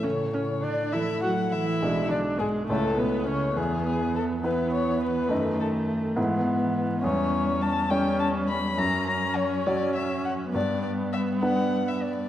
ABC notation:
X:1
M:6/8
L:1/16
Q:3/8=68
K:A
V:1 name="Violin"
c2 c2 d2 e2 f2 e2- | e2 d2 G2 A2 B2 c2 | G2 G2 A2 B2 c2 B2- | B2 A2 z8 |
[K:F#phr] c4 a2 g2 a2 b2 | ^a2 a2 c2 d2 e2 f2 | d2 d2 e2 f3 e d2 |]
V:2 name="Viola"
C2 C2 D2 E2 F2 E2- | E2 D2 G,2 A,2 B,2 C2 | B,6 B,6 | A,6 B,6 |
[K:F#phr] C6 C6 | C12 | B,12 |]
V:3 name="Grand piano"
A,,6 [A,EA]6 | [B,,,G,Dd]6 [C,,A,Ec]6 | E,,6 [B,EB]6 | [F,,A,^D^d]6 [G,,B,EB]6 |
[K:F#phr] E,,6 [G,Cc]6 | F,,6 [F,Fc]6 | G,,6 [B,DB]6 |]
V:4 name="Cello" clef=bass
C,2 C,2 D,2 E,2 F,2 E,2- | E,2 D,2 G,,2 A,,2 B,,2 C,2 | E,6 E,6 | ^D,6 E,3 E,3 |
[K:F#phr] G,6 G,6 | F,12 | G,12 |]